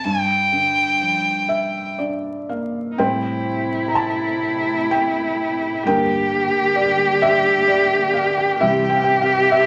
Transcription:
0.05 felt piano G2, fiddle G5
0.53 felt piano D3
1.01 felt piano F3
1.49 felt piano E5
1.99 felt piano D4 D5
2.49 felt piano A#3 F5
2.92 cello D#4
2.98 felt piano A2 G3 C4 C5 G5, string section C3 A3 G4, cello E4
3.88 felt piano A#5
3.95 felt piano A5
4.91 felt piano G5
5.84 felt piano G2 D3 A#3 A#4 G5, string section D3 A#3, cello G4
6.76 felt piano D5
7.22 felt piano E5
7.68 felt piano D5
8.14 felt piano F5
8.37 felt piano G5
8.59 felt piano C3 E3 G3 G4 E5, string section E3 C4, cello G4
8.89 felt piano G5
8.96 felt piano F5
9.04 felt piano G5
9.21 felt piano F5
9.51 felt piano E5

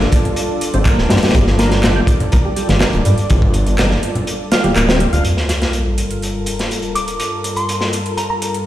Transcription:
Already playing: analog synth pad G3 D4 F4 A4 D5
0.00 snare, high conga
0.12 kick, closed hi-hat
0.25 closed hi-hat, low conga
0.36 closed hi-hat
0.61 closed hi-hat
0.74 detuned saw bass G1, tonewheel organ C4, closed hi-hat, high conga
0.85 tonewheel organ A#3, kick, clap, closed hi-hat
0.98 detuned saw bass D1, snare
1.10 detuned saw bass G2, tonewheel organ G4, snare, closed hi-hat
1.16 snare, closed hi-hat
1.23 tonewheel organ G3, snare, closed hi-hat
1.28 snare, closed hi-hat
1.34 detuned saw bass G1, tonewheel organ G3, kick, closed hi-hat, high conga
1.47 snare
1.59 tonewheel organ A#3, snare, closed hi-hat
1.71 snare, closed hi-hat
1.83 snare, clap, closed hi-hat, low conga
1.96 tonewheel organ G4, high conga
2.07 kick, closed hi-hat
2.20 closed hi-hat, low conga
2.32 tonewheel organ A#3, kick, closed hi-hat
2.45 tonewheel organ G3
2.56 tonewheel organ G3, closed hi-hat
2.69 detuned saw bass G1, tonewheel organ F3, snare, closed hi-hat, high conga
2.81 tonewheel organ A#3, snare, clap, closed hi-hat
2.93 detuned saw bass D1, closed hi-hat, low conga
3.05 detuned saw bass G2, closed hi-hat
3.18 closed hi-hat
3.30 detuned saw bass G1, kick, closed hi-hat, high conga
3.42 kick
3.54 closed hi-hat
3.67 closed hi-hat
3.78 tonewheel organ A#3, snare, clap, closed hi-hat, low conga
3.91 snare, high conga
4.03 closed hi-hat
4.15 closed hi-hat, low conga
4.27 closed hi-hat
4.52 tonewheel organ F4, snare, closed hi-hat
4.64 detuned saw bass D1, tonewheel organ G3, closed hi-hat, high conga
4.76 detuned saw bass D1, tonewheel organ A#3, clap, closed hi-hat
4.88 tonewheel organ C4, snare, closed hi-hat
5.00 tonewheel organ G3, closed hi-hat
5.13 detuned saw bass D2, tonewheel organ F4, closed hi-hat
5.24 analog synth pad G2 G3 F4 A4 A#4, closed hi-hat, sub drop
5.37 snare
5.49 snare, closed hi-hat
5.62 snare, closed hi-hat
5.73 closed hi-hat
5.98 closed hi-hat
6.11 closed hi-hat
6.22 closed hi-hat
6.46 closed hi-hat
6.59 snare, closed hi-hat
6.71 closed hi-hat
6.82 closed hi-hat
6.95 synth bell D6, closed hi-hat
7.08 closed hi-hat
7.20 closed hi-hat
7.44 closed hi-hat
7.56 synth bell C6, closed hi-hat
7.69 closed hi-hat
7.81 snare
7.93 closed hi-hat
8.06 closed hi-hat
8.17 synth bell A#5, closed hi-hat
8.30 synth bell A#5
8.42 closed hi-hat
8.54 closed hi-hat

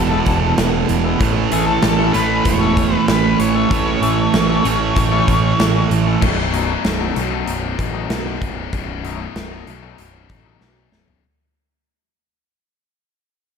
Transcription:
Already playing: picked electric bass E1, distorted electric guitar E2 B2 E3, lead electric guitar A4
0.11 clean electric guitar E3 G#3 B3 E4
0.26 picked electric bass E1, kick, closed hi-hat
0.58 picked electric bass E1, snare, closed hi-hat
0.73 muted clean electric guitar stroke
0.89 picked electric bass E1, closed hi-hat
1.05 clean electric guitar E3 G#3 B3 E4
1.19 picked electric bass A1, distorted electric guitar A2 E3 A3, kick, closed hi-hat
1.36 muted clean electric guitar stroke
1.52 picked electric bass A1, clean electric guitar A3 C#4 E4 A4, lead electric guitar G#4, closed hi-hat
1.67 lead electric guitar A4
1.82 picked electric bass A1, muted clean electric guitar stroke, snare, closed hi-hat
1.99 clean electric guitar A3 C#4 E4 A4
2.13 picked electric bass A1, distorted electric guitar A2 E3 A3, lead electric guitar B4, closed hi-hat
2.45 picked electric bass E1, lead electric guitar C#5, muted clean electric guitar stroke, kick, closed hi-hat
2.61 clean electric guitar A3 C#4 E4 A4
2.77 kick, closed hi-hat
2.95 lead electric guitar B4
3.08 picked electric bass A1, lead electric guitar B4, snare, closed hi-hat
3.24 muted clean electric guitar stroke
3.39 picked electric bass A1, lead electric guitar C#5, closed hi-hat
3.55 clean electric guitar A3 C#4 E4 A4
3.70 picked electric bass A1, distorted electric guitar A2 E3 A3, kick, closed hi-hat
3.87 muted clean electric guitar stroke
4.02 picked electric bass A1, clean electric guitar A3 C#4 E4 A4, closed hi-hat
4.34 picked electric bass A1, muted clean electric guitar stroke, snare, closed hi-hat
4.49 clean electric guitar A3 C#4 E4 A4
4.64 picked electric bass A1, distorted electric guitar A2 E3 A3, closed hi-hat
4.96 picked electric bass A1, muted clean electric guitar stroke, kick, closed hi-hat
5.12 clean electric guitar A3 C#4 E4 A4
5.28 picked electric bass A1, kick, closed hi-hat
5.60 picked electric bass A1, snare, closed hi-hat
5.75 muted clean electric guitar stroke
5.91 picked electric bass A1, closed hi-hat
6.06 clean electric guitar A3 C#4 E4 A4
6.21 picked electric bass B0, distorted electric guitar B1 F#2 B2, kick, crash
6.38 muted clean electric guitar stroke
6.53 clean electric guitar B2 F#3 A3 D#4, closed hi-hat
6.85 picked electric bass B0, muted clean electric guitar stroke, snare, closed hi-hat
7.00 clean electric guitar B2 F#3 A3 D#4
7.16 picked electric bass B1, distorted electric guitar B1 F#2 B2, snare, closed hi-hat
7.31 clean electric guitar B2 F#3 A3 D#4
7.47 picked electric bass B0, closed hi-hat
7.79 picked electric bass A1, kick, closed hi-hat
7.94 clean electric guitar B2 F#3 A3 D#4
8.10 picked electric bass B1, snare, closed hi-hat
8.26 muted clean electric guitar stroke
8.41 picked electric bass B0, muted clean electric guitar stroke, kick, closed hi-hat
8.73 picked electric bass B0, distorted electric guitar B1 F#2 B2, kick, closed hi-hat
8.88 muted clean electric guitar stroke
9.04 clean electric guitar B2 F#3 A3 D#4, closed hi-hat
9.36 picked electric bass B0, muted clean electric guitar stroke, snare, closed hi-hat
9.51 clean electric guitar B2 F#3 A3 D#4
9.67 picked electric bass B1, distorted electric guitar B1 F#2 B2, closed hi-hat
9.82 clean electric guitar B2 F#3 A3 D#4
9.98 picked electric bass B0, closed hi-hat
10.29 picked electric bass A1, kick, closed hi-hat
10.45 clean electric guitar B2 F#3 A3 D#4
10.61 picked electric bass B1, snare
10.77 muted clean electric guitar stroke
10.92 picked electric bass B0, muted clean electric guitar stroke, snare
11.08 floor tom

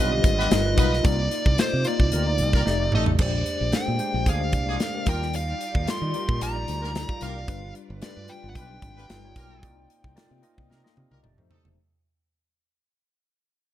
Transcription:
Already playing: fingered electric bass B1, tine electric piano G3 D4 F4 G4 B4, string section G3 C4 F4 B4
0.00 horn section B3 G4 B4, lead electric guitar D#5
0.11 tine electric piano D3 G3 F4 G4
0.24 fingered electric bass G#1, kick, closed hi-hat
0.39 horn section B3 F4 G4 B4, snare
0.50 fingered electric bass G1, tine electric piano G3 D#4 F4 B4, string section D#4 A#4 B4, snare, closed hi-hat
0.64 tine electric piano G3 D#4 F4 B4
0.78 fingered electric bass B1, horn section B3 D#4 F4 B4, lead electric guitar D#5, kick, closed hi-hat
0.93 snare
1.04 fingered electric bass C2, string section C3 A#3 D5, tine electric piano A#3 D#4 F4 D5, lead electric guitar D5, kick, closed hi-hat
1.31 closed hi-hat
1.46 fingered electric bass C2, kick
1.57 tine electric piano A#3 D#4 F4 D5, lead electric guitar C5, snare, closed hi-hat
1.73 fingered electric bass C3
1.84 tine electric piano A#3 D#4 F4 D5, lead electric guitar D5, closed hi-hat
2.00 fingered electric bass C2, kick
2.12 fingered electric bass D2, horn section A#3 F4 G4 A#4, closed hi-hat
2.26 tine electric piano A#3 D#4 F4 D5
2.38 fingered electric bass C2, closed hi-hat
2.53 horn section A#3 F4 G4 A#4, kick, snare
2.65 fingered electric bass F1, string section F3 A3, tine electric piano A3 D#4 G4 D5, snare
2.80 tine electric piano A3 D#4 G4 D5
2.92 fingered electric bass A1, horn section A3 D#4 A4, lead electric guitar D#5, mid tom
3.06 floor tom
3.18 fingered electric bass A#1, tine electric piano G#3 D4 G4 C5, string section G#3 A#3 D5, lead electric guitar D5, kick, crash
3.46 closed hi-hat
3.61 fingered electric bass A#1
3.71 tine electric piano G#3 D4 G4 C5, muted fingered electric bass stroke, snare, closed hi-hat
3.75 lead electric guitar G5
3.88 fingered electric bass A#2
3.98 tine electric piano G#3 D4 G4 C5, closed hi-hat
4.14 fingered electric bass A#1
4.26 fingered electric bass D2, horn section G#3 D4 F4 G#4, lead electric guitar F5, kick, closed hi-hat
4.39 tine electric piano G#3 D4 G4 D5
4.52 fingered electric bass C2, kick, closed hi-hat
4.68 horn section G#3 D4 F4 G#4
4.80 snare, closed hi-hat
4.93 tine electric piano G#3 D4 G4 A#4
5.06 fingered electric bass D#2, tine electric piano G3 D#4 F4 D5, horn section A#3 F4 G4 A#4, string section D#4 F4 G4, lead electric guitar G5, kick, closed hi-hat
5.22 snare
5.34 lead electric guitar F5, closed hi-hat
5.61 closed hi-hat
5.75 fingered electric bass D#2, kick
5.87 tine electric piano G3 D#4 F4 D5, lead electric guitar C6, muted fingered electric bass stroke, snare, closed hi-hat
6.02 fingered electric bass D#3
6.14 tine electric piano G3 D#4 F4 A#4, closed hi-hat
6.29 fingered electric bass A#2, kick
6.41 fingered electric bass A#1, horn section A#3 F4 G4 A#4, lead electric guitar A#5, closed hi-hat
6.55 tine electric piano G3 D#4 F4 D5
6.68 fingered electric bass D2, closed hi-hat
6.82 horn section A#3 F4 G4 A#4, snare
6.95 snare, closed hi-hat
7.08 tine electric piano G3 D#4 F4 F5, kick
7.21 fingered electric bass C2, horn section A#3 F4 G4 A#4, lead electric guitar F5, closed hi-hat
7.47 fingered electric bass G1, tine electric piano G3 D4 F4 B4, string section G3 F4 B4, kick, closed hi-hat
7.75 closed hi-hat
7.90 fingered electric bass G1
8.01 tine electric piano G3 D4 F4 B4, lead electric guitar D5, muted fingered electric bass stroke, snare, closed hi-hat
8.17 fingered electric bass G2
8.28 tine electric piano G3 D4 F4 B4, lead electric guitar G5, closed hi-hat
8.44 fingered electric bass G1
8.50 lead electric guitar F#5
8.55 fingered electric bass B1, horn section B3 F4 G4 B4, lead electric guitar G5, kick, closed hi-hat
8.69 tine electric piano G3 D4 F4 B4
8.82 fingered electric bass G#1, kick, closed hi-hat
8.97 horn section B3 F4 G4 B4, snare
9.08 fingered electric bass G1, tine electric piano G3 D#4 F4 B4, string section D#4 A#4, snare, closed hi-hat
9.24 tine electric piano G3 D#4 F4 C#5
9.36 fingered electric bass B1, horn section A#3 F4 G4 A#4, kick, closed hi-hat
9.62 fingered electric bass C2, string section C3 A#3 C4 D#4 F4, tine electric piano A#3 D#4 F4 D5, kick, closed hi-hat
9.90 closed hi-hat
10.04 fingered electric bass C2, kick
10.16 tine electric piano A#3 D#4 F4 D5, muted fingered electric bass stroke, snare, closed hi-hat
10.31 fingered electric bass C3
10.42 tine electric piano A#3 D#4 F4 D#5, closed hi-hat
10.58 fingered electric bass C2, kick
10.70 fingered electric bass C3, horn section A#3 F4 G4 A#4, snare
10.83 tine electric piano A#3 D#4 F4 D#5, snare
10.97 fingered electric bass C3, high tom
11.11 fingered electric bass C2, horn section A#3 F4 G4 A#4, high tom
11.23 fingered electric bass F1, tine electric piano A3 D#4 G4 D5, string section A3, mid tom
11.37 fingered electric bass F2, tine electric piano A3 D#4 G4 C5, mid tom
11.50 horn section A3 D#4 A4, floor tom
11.65 fingered electric bass E1, floor tom

